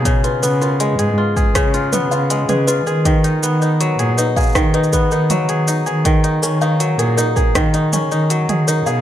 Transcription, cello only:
\new Staff \with { instrumentName = "Cello" } { \clef bass \time 4/4 \key b \lydian \tempo 4 = 80 r8 cis8. gis,16 r8 cis8. cis8 cis8 dis16~ | dis8 dis8. ais,16 r8 dis8. dis8 dis8 dis16~ | dis8 dis8. ais,16 r8 dis8. dis8 dis8 b,16 | }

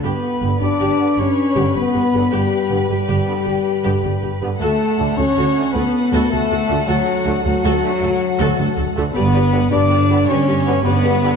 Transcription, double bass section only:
\new Staff \with { instrumentName = "Double bass section" } { \clef bass \time 12/8 \key g \lydian \tempo 4. = 105 g,,8 r8 g,,8 g,,8 g,,8 r8 g,,8 r8 g,,8 g,,8 g,,8 g,,8 | g,,8 r8 g,,8 g,,8 g,,8 r8 g,,8 r8 g,,8 g,,8 g,,8 g,,8 | d,8 r8 d,8 d,8 d,8 r8 d,8 r8 d,8 d,8 d,8 d,8 | d,8 r8 d,8 d,8 d,8 r8 d,8 r8 d,8 d,8 d,8 d,8 |
g,,4. g,,4. g,,4. g,,4. | }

